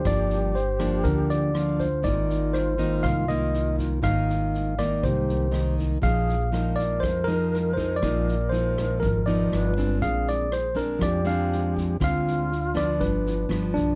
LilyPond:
<<
  \new Staff \with { instrumentName = "Tine electric piano" } { \time 4/4 \key bes \mixolydian \tempo 4 = 120 d''4 c''4 bes'8 d''4 c''8 | d''4 c''4 f''8 ees''4 r8 | f''4. d''8 c''4. r8 | f''4. d''8 c''8 bes'4 c''8 |
d''4 c''4 bes'8 d''4 r8 | f''8 d''8 c''8 bes'8 d''8 f''4 r8 | f''4. d''8 b'4. d'8 | }
  \new Staff \with { instrumentName = "Alto flute" } { \time 4/4 \key bes \mixolydian g'2. f'4 | f'1~ | f'4. r8 g'4. r8 | aes'4 bes'2.~ |
bes'2. b'4 | aes'4. r8 g'2 | f'2 d'4. r8 | }
  \new Staff \with { instrumentName = "Nylon-string guitar" } { \clef bass \time 4/4 \key bes \mixolydian << { <f bes d'>4 r8 <f bes d'>4. <f bes d'>8 r8 | <ees bes ees'>4. <ees bes ees'>4 <ees bes ees'>4. | <ees bes ees'>4. <ees bes ees'>4. <ees bes ees'>4 | <f aes ees'>8 r8 <f aes ees'>4. <f aes ees'>4 <f aes ees'>8 |
<f aes ees'>8 r8 <f aes ees'>4. <f b ees'>4 <aes c' d'>8~ | <aes c' d'>4 r8 <aes c' d'>4 <aes c' d'>4. | <aes c' f'>4 r8 <f b d'>4. <f b d'>4 | } \\ { g,2 d2 | aes,2 aes,2 | aes,2 aes,2 | bes,2 f,2 |
bes,2 f,4 r4 | bes,2 f2 | d2 g,2 | } >> }
  \new Staff \with { instrumentName = "Upright bass" } { \clef bass \time 4/4 \key bes \mixolydian g,,2 d,2 | aes,,2 c,2 | aes,,2 c,2 | bes,,2 f,2 |
bes,,2 aes,,4 g,,4 | bes,,2 f,2 | d,2 g,,4 g,,8 b,,8 | }
  \new DrumStaff \with { instrumentName = "Drums" } \drummode { \time 4/4 <bd ss sn>8 sn8 sn8 <bd ss sn>8 <bd sn>8 sn8 <ss sn>8 <bd sn>8 | <bd sn>8 sn8 <ss sn>8 <bd sn>8 <bd ss sn>8 sn8 sn8 <bd sn>8 | <bd ss sn>8 sn8 sn8 <bd ss sn>8 <bd sn>8 sn8 <ss sn>8 <bd sn>8 | <bd sn>8 sn8 <ss sn>8 <bd sn>8 <bd ss sn>8 sn8 sn8 <bd sn>8 |
<bd ss sn>8 sn8 sn8 <bd ss sn>8 <bd sn>8 sn8 <ss sn>8 <bd sn>8 | <bd sn>8 sn8 <ss sn>8 <bd sn>8 <bd ss sn>8 sn8 sn8 <bd sn>8 | <bd ss sn>8 sn8 sn8 <bd ss sn>8 <bd sn>8 sn8 <ss sn>8 <bd sn>8 | }
>>